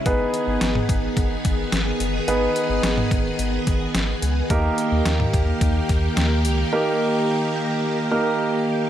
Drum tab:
HH |x-x-x-x-x-x-x-x-|x-x-x-x-x-x-x-x-|x-x-x-x-x-x-x-x-|----------------|
SD |----o-------o---|----o-------o---|----o-------o---|----------------|
T2 |-----o----------|-----o----------|-----o----------|----------------|
BD |o-----o-o-o-----|------o---o-----|o-----o-o-o-----|----------------|